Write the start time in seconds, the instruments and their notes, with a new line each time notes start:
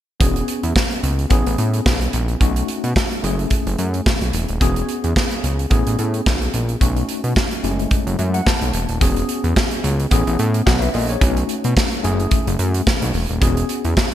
0.20 analog synth bass E1, tine electric piano B3 C#4 F#4 G#4, kick, closed hi-hat
0.36 closed hi-hat
0.48 closed hi-hat
0.63 analog synth bass E2, closed hi-hat
0.76 kick, snare
0.91 closed hi-hat
1.03 analog synth bass C#2, closed hi-hat
1.19 closed hi-hat
1.30 analog synth bass A1, tine electric piano B3 C#4 E4 G#4, kick, closed hi-hat
1.46 analog synth bass A1, closed hi-hat
1.58 analog synth bass A2, closed hi-hat
1.74 closed hi-hat
1.86 analog synth bass B1, kick, snare
2.01 closed hi-hat
2.13 analog synth bass A#1, closed hi-hat
2.28 closed hi-hat
2.40 analog synth bass B1, tine electric piano A3 C#4 D#4 F#4, kick, closed hi-hat
2.56 closed hi-hat
2.68 closed hi-hat
2.84 analog synth bass B2, closed hi-hat
2.96 kick, snare
3.11 closed hi-hat
3.23 analog synth bass F#1, tine electric piano A3 C#4 E4 G#4, closed hi-hat
3.39 closed hi-hat
3.50 kick, closed hi-hat
3.66 analog synth bass F#1, closed hi-hat
3.79 analog synth bass F#2, closed hi-hat
3.94 closed hi-hat
4.06 kick, snare
4.21 analog synth bass B1, closed hi-hat
4.33 analog synth bass E1, closed hi-hat
4.48 analog synth bass D#1, closed hi-hat
4.60 analog synth bass E1, tine electric piano B3 C#4 F#4 G#4, kick, closed hi-hat
4.76 closed hi-hat
4.89 closed hi-hat
5.04 analog synth bass E2, closed hi-hat
5.16 kick, snare
5.31 closed hi-hat
5.44 analog synth bass C#2, closed hi-hat
5.59 closed hi-hat
5.70 analog synth bass A1, tine electric piano B3 C#4 E4 G#4, kick, closed hi-hat
5.87 analog synth bass A1, closed hi-hat
5.99 analog synth bass A2, closed hi-hat
6.14 closed hi-hat
6.26 analog synth bass B1, kick, snare
6.42 closed hi-hat
6.54 analog synth bass A#1, closed hi-hat
6.69 closed hi-hat
6.80 analog synth bass B1, tine electric piano A3 C#4 D#4 F#4, kick, closed hi-hat
6.96 closed hi-hat
7.09 closed hi-hat
7.24 analog synth bass B2, closed hi-hat
7.36 kick, snare
7.51 closed hi-hat
7.63 analog synth bass F#1, tine electric piano A3 C#4 E4 G4, closed hi-hat
7.71 tine electric piano G#3
7.79 closed hi-hat
7.91 kick, closed hi-hat
8.07 analog synth bass F#1, closed hi-hat
8.19 analog synth bass F#2, tine electric piano E5, closed hi-hat
8.34 tine electric piano F#5, closed hi-hat
8.46 tine electric piano A5, kick, snare
8.61 analog synth bass B1, closed hi-hat
8.73 analog synth bass E1, closed hi-hat
8.89 analog synth bass D#1, closed hi-hat
9.00 analog synth bass E1, tine electric piano B3 C#4 F#4 G#4, kick, closed hi-hat
9.16 closed hi-hat
9.29 closed hi-hat
9.44 analog synth bass E2, closed hi-hat
9.56 kick, snare
9.71 closed hi-hat
9.84 analog synth bass C#2, closed hi-hat
10.00 closed hi-hat
10.11 analog synth bass A1, tine electric piano B3 C#4 E4 G#4, kick, closed hi-hat
10.27 analog synth bass A1, closed hi-hat
10.39 analog synth bass A2, closed hi-hat
10.54 closed hi-hat
10.66 analog synth bass B1, tine electric piano C#5 F#5, kick, snare
10.82 tine electric piano B4 E5, closed hi-hat
10.94 analog synth bass A#1, tine electric piano A4 D#5, open hi-hat
11.09 tine electric piano G#4 C#5, closed hi-hat
11.21 analog synth bass B1, tine electric piano A3 C#4 D4 F#4, kick, closed hi-hat
11.28 tine electric piano D#4
11.37 closed hi-hat
11.49 closed hi-hat
11.64 analog synth bass B2, closed hi-hat
11.77 kick, snare
11.92 closed hi-hat
12.03 analog synth bass F#1, tine electric piano A3 C#4 E4 G#4, closed hi-hat
12.20 closed hi-hat
12.31 kick, closed hi-hat
12.47 analog synth bass F#1, closed hi-hat
12.59 analog synth bass F#2, closed hi-hat
12.74 closed hi-hat
12.87 kick, snare
13.02 analog synth bass B1, closed hi-hat
13.14 analog synth bass E1, open hi-hat
13.29 analog synth bass D#1, closed hi-hat
13.41 analog synth bass E1, tine electric piano B3 C#4 F#4 G#4, kick, closed hi-hat
13.57 closed hi-hat
13.69 closed hi-hat
13.85 analog synth bass E2, closed hi-hat
13.97 kick, snare